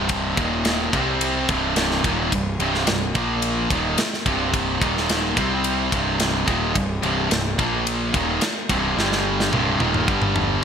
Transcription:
Already playing: picked electric bass C1, overdriven electric guitar C2 G2 C3
0.09 kick, ride
0.37 picked electric bass D#1, overdriven electric guitar D#2 A#2 D#3, kick, ride
0.65 snare, ride
0.93 picked electric bass C2, overdriven electric guitar C3 G3 C4, kick, ride
1.21 ride
1.47 picked electric bass C1, overdriven electric guitar C2 G2 C3, kick, ride
1.76 snare, ride
1.91 snare
2.04 picked electric bass D#1, overdriven electric guitar D#2 A#2 D#3, kick, ride
2.32 picked electric bass C1, overdriven electric guitar C2 G2, kick, ride
2.59 picked electric bass C1, overdriven electric guitar C2 G2 C3, ride
2.75 snare
2.87 picked electric bass C1, overdriven electric guitar C2 G2, snare, ride
3.15 picked electric bass A#1, overdriven electric guitar A#2 F3 A#3, kick, ride
3.42 ride
3.70 picked electric bass D#1, overdriven electric guitar D#2 A#2 D#3, kick, ride
3.98 muted overdriven electric guitar stroke, muted distorted electric guitar stroke, snare, ride
4.13 snare
4.26 picked electric bass C1, overdriven electric guitar C2 G2 C3, kick, ride
4.54 kick, ride
4.80 picked electric bass D#1, overdriven electric guitar D#2 A#2 D#3, kick, ride
4.97 snare
5.09 snare, ride
5.36 picked electric bass C2, overdriven electric guitar C3 G3 C4, kick, ride
5.64 ride
5.90 picked electric bass C1, overdriven electric guitar C2 G2 C3, kick, ride
6.20 snare, ride
6.46 picked electric bass D#1, overdriven electric guitar D#2 A#2 D#3, kick, ride
6.74 picked electric bass C1, overdriven electric guitar C2 G2, kick, ride
7.02 picked electric bass C1, overdriven electric guitar C2 G2 C3, ride
7.30 picked electric bass C1, overdriven electric guitar C2 G2, snare, ride
7.58 picked electric bass A#1, overdriven electric guitar A#2 F3 A#3, kick, ride
7.87 ride
8.14 picked electric bass D#1, overdriven electric guitar D#2 A#2 D#3, kick, ride
8.41 muted overdriven electric guitar stroke, muted distorted electric guitar stroke, snare, ride
8.69 picked electric bass C1, overdriven electric guitar C2 G2 C3, kick, ride
8.97 picked electric bass G1, overdriven electric guitar G2 D3 G3, snare
9.12 snare
9.40 snare
9.52 picked electric bass C1, overdriven electric guitar C2 G2 C3, high tom
9.80 picked electric bass D#1, overdriven electric guitar D#2 A#2 D#3, high tom
9.94 mid tom
10.08 picked electric bass G1, overdriven electric guitar G2 D3 G3, kick
10.22 mid tom
10.36 mid tom

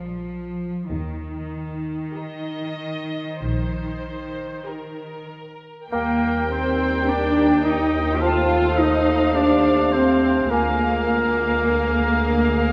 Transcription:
Already playing: double bass section A#1, cello section F3, viola section G#4, violin section A#4 D5
0.89 double bass section D#2, cello section D#3
2.15 viola section G4, violin section A#4 D#5
3.40 double bass section A#1, violin section C5
4.66 viola section G4, violin section A#4
5.91 double bass section D#2, french horn section G3 A#4, viola section A#3, cello section A#3, bassoon A#3, violin section G4 A#4 G5, oboe A#4, flute section G5
6.51 viola section C4, cello section C4, oboe C5
7.08 viola section D4, cello section D4, oboe D5
7.64 viola section D#4, cello section D#4, oboe D#5
8.16 cello section G4
8.20 french horn section A3 C5, bassoon C4, viola section F4, cello section F4, clarinet A4, violin section A4 C5 F5, oboe F5, flute section A5
8.78 viola section D#4, cello section D#4, oboe D#5
9.35 viola section D4, cello section D4, clarinet G4, oboe D5
9.92 cello section C4, viola section C4, oboe C5
10.50 double bass section D2, french horn section G#3 A#4, viola section A#3, bassoon A#3, cello section A#3, clarinet F4, violin section G#4 A#4 F5, oboe A#4, flute section G#5
11.66 clarinet A#4
12.23 clarinet G#4

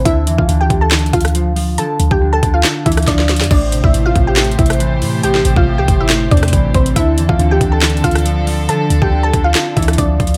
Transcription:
0.05 808-style bass D2, clean electric guitar D3, synth pluck E4 E5, kick, closed hi-hat
0.27 808-style bass E2, clean electric guitar E3, closed hi-hat
0.38 808-style bass D2, synth pluck F4 F5, kick
0.48 808-style bass D2, clean electric guitar D3, closed hi-hat
0.61 synth pluck G4 G5
0.70 808-style bass D2, clean electric guitar D3, kick, closed hi-hat
0.81 synth pluck A4 A5
0.91 clean electric guitar D3, snare, clap, closed hi-hat
0.99 closed hi-hat
1.06 closed hi-hat
1.13 808-style bass D2, synth pluck F4 F5, kick, closed hi-hat
1.21 closed hi-hat
1.25 cross-stick, closed hi-hat
1.28 closed hi-hat
1.35 clean electric guitar F3, closed hi-hat
1.56 clean electric guitar F3, open hi-hat
1.78 clean electric guitar D3, 808-style bass F3, synth pluck A4 A5, closed hi-hat
2.00 808-style bass D2, closed hi-hat
2.11 808-style bass D2, synth pluck G4 G5, kick
2.21 clean electric guitar D3
2.33 synth pluck A4 A5
2.43 808-style bass D2, clean electric guitar D3, kick, closed hi-hat
2.54 synth pluck F4 F5
2.64 clean electric guitar D3, snare, clap, closed hi-hat
2.86 808-style bass D2, clean electric guitar E3, synth pluck E4 E5, kick, closed hi-hat
2.92 closed hi-hat
2.97 cross-stick, closed hi-hat
3.03 closed hi-hat
3.07 808-style bass D2, clean electric guitar F3, synth pluck D4 D5, kick, snare, closed hi-hat
3.19 snare
3.29 clean electric guitar F3, snare, closed hi-hat
3.36 closed hi-hat
3.41 808-style bass F2, snare, closed hi-hat
3.50 808-style bass A1, clean electric guitar A2, string section A3 C4 G4 C5, synth pluck D4 D5, kick, crash
3.72 clean electric guitar C3, closed hi-hat
3.84 808-style bass A1, synth pluck E4 E5, kick
3.94 808-style bass A1, clean electric guitar A2, closed hi-hat
4.06 synth pluck F4 F5
4.15 808-style bass A1, clean electric guitar A2, kick, closed hi-hat
4.27 synth pluck G4 G5
4.37 clean electric guitar A2, snare, clap, closed hi-hat
4.44 closed hi-hat
4.52 closed hi-hat
4.58 808-style bass A1, clean electric guitar C3, synth pluck E4 E5, kick, closed hi-hat
4.66 closed hi-hat
4.70 cross-stick, closed hi-hat
4.73 closed hi-hat
4.80 clean electric guitar E3, closed hi-hat
5.02 808-style bass A2, clean electric guitar E3, open hi-hat
5.23 808-style bass A1, clean electric guitar A2, synth pluck G4 G5, closed hi-hat
5.35 snare
5.45 808-style bass A1, clean electric guitar C3, closed hi-hat
5.56 808-style bass A1, synth pluck F4 F5, kick
5.67 clean electric guitar A2
5.78 808-style bass C2, synth pluck G4 G5
5.88 808-style bass G1, clean electric guitar A2, kick, closed hi-hat
6.00 synth pluck E4 E5
6.09 clean electric guitar A2, snare, clap, closed hi-hat
6.31 808-style bass E2, clean electric guitar C3, synth pluck D4 D5, kick, closed hi-hat
6.37 closed hi-hat
6.43 cross-stick, closed hi-hat
6.48 closed hi-hat
6.52 808-style bass A1, clean electric guitar E3, kick, closed hi-hat
6.74 808-style bass A1, clean electric guitar E3, synth pluck C4 C5, kick, closed hi-hat, open hi-hat
6.86 closed hi-hat
6.96 808-style bass D2, clean electric guitar D3, string section D3 D4 A4, synth pluck E4 E5, kick, closed hi-hat
7.18 808-style bass E2, clean electric guitar E3, closed hi-hat
7.29 808-style bass D2, synth pluck F4 F5, kick
7.39 808-style bass D2, clean electric guitar D3, closed hi-hat
7.51 synth pluck G4 G5
7.61 808-style bass D2, clean electric guitar D3, kick, closed hi-hat
7.72 synth pluck A4 A5
7.82 clean electric guitar D3, snare, clap, closed hi-hat
7.90 closed hi-hat
7.97 closed hi-hat
8.04 808-style bass D2, synth pluck F4 F5, kick, closed hi-hat
8.11 closed hi-hat
8.15 cross-stick, closed hi-hat
8.18 closed hi-hat
8.26 clean electric guitar F3, closed hi-hat
8.47 clean electric guitar F3, open hi-hat
8.69 clean electric guitar D3, 808-style bass F3, synth pluck A4 A5, closed hi-hat
8.90 808-style bass D2, closed hi-hat
9.02 808-style bass D2, synth pluck G4 G5, kick
9.12 clean electric guitar D3
9.23 synth pluck A4 A5
9.33 808-style bass D2, clean electric guitar D3, kick, closed hi-hat
9.44 synth pluck F4 F5
9.54 clean electric guitar D3, snare, clap, closed hi-hat
9.76 808-style bass D2, clean electric guitar E3, synth pluck E4 E5, kick, closed hi-hat
9.82 closed hi-hat
9.88 cross-stick, closed hi-hat
9.93 closed hi-hat
9.98 808-style bass D2, clean electric guitar F3, synth pluck D4 D5, kick, closed hi-hat
10.20 808-style bass D2, clean electric guitar F3, kick, closed hi-hat
10.27 closed hi-hat

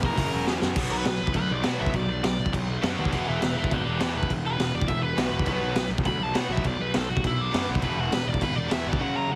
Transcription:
Already playing: overdriven electric guitar E2 B2 E3
0.03 picked electric bass F1, lead electric guitar A#4, kick
0.16 picked electric bass F#1, overdriven electric guitar F#2 C#3 F#3, kick, open hi-hat
0.34 picked electric bass E1
0.47 picked electric bass E2, snare
0.62 picked electric bass F#2, snare
0.76 picked electric bass B1, overdriven electric guitar B2 F#3 B3, kick, crash
0.91 picked electric bass B1, lead electric guitar B4
1.05 picked electric bass B1, overdriven electric guitar B2 F#3, snare, crash
1.21 picked electric bass B1
1.27 kick
1.34 picked electric bass D2, overdriven electric guitar B2 F#3, lead electric guitar B4, kick, crash
1.50 picked electric bass B1, lead electric guitar D5
1.63 overdriven electric guitar B2 F#3 B3, picked electric bass B2, snare, crash
1.81 picked electric bass B1, lead electric guitar E5
1.86 kick
1.93 picked electric bass B1, overdriven electric guitar B2 F#3, lead electric guitar D5, kick, crash
2.08 picked electric bass B1
2.24 picked electric bass B1, overdriven electric guitar B2 F#3, lead electric guitar D5, snare, crash
2.39 picked electric bass B1
2.46 kick
2.53 picked electric bass B1, overdriven electric guitar B2 F#3, kick, crash
2.82 picked electric bass F#2, overdriven electric guitar B2 F#3 B3, lead electric guitar D5 F#5, snare, crash
2.99 picked electric bass D#2, lead electric guitar D5 F#5
3.05 kick
3.11 picked electric bass E1, overdriven electric guitar E2 B2 E3, lead electric guitar D5 F#5, kick, crash
3.27 picked electric bass E1, lead electric guitar B4 E5
3.40 picked electric bass E1, overdriven electric guitar E2 B2, lead electric guitar B4 E5, snare, crash
3.57 picked electric bass E1, lead electric guitar B4 E5
3.64 kick
3.70 picked electric bass G#1, overdriven electric guitar E2 B2, lead electric guitar B4 D5, kick, crash
3.85 picked electric bass E1, lead electric guitar B4 D5
3.99 overdriven electric guitar E2 B2 E3, picked electric bass E2, lead electric guitar B4 D5, snare, crash
4.15 picked electric bass E1, lead electric guitar B4
4.23 kick
4.29 picked electric bass E1, overdriven electric guitar E2 B2, kick, crash
4.44 picked electric bass E1, lead electric guitar B4
4.58 picked electric bass E1, overdriven electric guitar E2 B2, snare, crash
4.74 picked electric bass E1, lead electric guitar D5
4.81 kick
4.87 picked electric bass E1, overdriven electric guitar E2 B2, lead electric guitar E5, kick, crash
5.03 lead electric guitar B4
5.16 picked electric bass B1, overdriven electric guitar E2 B2 E3, snare, crash
5.31 picked electric bass E1
5.39 kick
5.45 picked electric bass B1, overdriven electric guitar B2 F#3 B3, kick, crash
5.49 distorted electric guitar B2
5.61 picked electric bass B1
5.75 picked electric bass B1, overdriven electric guitar B2 F#3, snare, crash
5.90 picked electric bass B1
5.98 kick
6.04 picked electric bass D2, overdriven electric guitar B2 F#3, lead electric guitar B5, kick, crash
6.08 distorted electric guitar F#3
6.20 picked electric bass B1, lead electric guitar A5
6.34 overdriven electric guitar B2 F#3 B3, picked electric bass B2, lead electric guitar F#5, snare, crash
6.49 picked electric bass B1, lead electric guitar E5
6.57 kick
6.64 picked electric bass B1, overdriven electric guitar B2 F#3, lead electric guitar D5, kick, crash
6.79 picked electric bass B1, lead electric guitar B4
6.94 picked electric bass B1, overdriven electric guitar B2 F#3, lead electric guitar A4, snare, crash
7.09 picked electric bass B1, lead electric guitar F#4
7.17 kick
7.24 picked electric bass B1, overdriven electric guitar B2 F#3, lead electric guitar E4, kick, crash
7.41 lead electric guitar D4
7.51 picked electric bass F#2, overdriven electric guitar B2 F#3 B3, snare, crash
7.69 picked electric bass B1
7.75 kick
7.81 picked electric bass E1, overdriven electric guitar E2 B2 E3, lead electric guitar B4, kick, crash
7.97 picked electric bass E1, lead electric guitar F#4
8.10 picked electric bass E1, overdriven electric guitar E2 B2, lead electric guitar B4, snare, crash
8.27 picked electric bass E1, lead electric guitar D5
8.34 kick
8.40 picked electric bass G#1, overdriven electric guitar E2 B2, lead electric guitar B4, kick, crash
8.56 picked electric bass E1, lead electric guitar D5
8.68 overdriven electric guitar E2 B2 E3, picked electric bass E2, snare, crash
8.73 lead electric guitar E5
8.86 picked electric bass G#1, lead electric guitar D5
8.93 kick
8.98 overdriven electric guitar F#2 C#3 F#3, lead electric guitar F#5
9.17 lead electric guitar A#5
9.28 overdriven electric guitar F#2 C#3, lead electric guitar F#5

